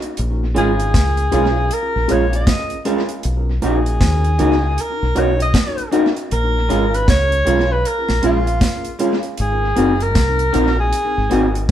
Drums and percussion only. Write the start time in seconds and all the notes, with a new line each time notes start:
0.02 closed hi-hat
0.17 closed hi-hat
0.56 closed hi-hat
0.80 closed hi-hat
0.94 kick, snare, closed hi-hat
1.17 closed hi-hat
1.32 closed hi-hat
1.71 closed hi-hat
2.09 closed hi-hat
2.33 closed hi-hat
2.47 kick, snare, closed hi-hat
2.70 closed hi-hat
2.85 closed hi-hat
3.09 closed hi-hat
3.23 closed hi-hat
3.62 closed hi-hat
3.86 closed hi-hat
4.01 kick, snare, closed hi-hat
4.24 closed hi-hat
4.39 closed hi-hat
4.78 closed hi-hat
5.16 closed hi-hat
5.40 closed hi-hat
5.54 kick, snare, closed hi-hat
5.78 closed hi-hat
5.92 closed hi-hat
6.17 closed hi-hat
6.31 closed hi-hat
6.70 closed hi-hat
6.94 closed hi-hat
7.08 kick, snare, closed hi-hat
7.32 closed hi-hat
7.47 closed hi-hat
7.85 closed hi-hat
8.09 snare
8.23 closed hi-hat
8.47 closed hi-hat
8.61 kick, snare, closed hi-hat
8.84 closed hi-hat
8.99 closed hi-hat
9.23 closed hi-hat
9.37 closed hi-hat
9.76 closed hi-hat
10.00 closed hi-hat
10.15 kick, snare, closed hi-hat
10.39 closed hi-hat
10.54 closed hi-hat
10.93 closed hi-hat
11.31 closed hi-hat
11.55 closed hi-hat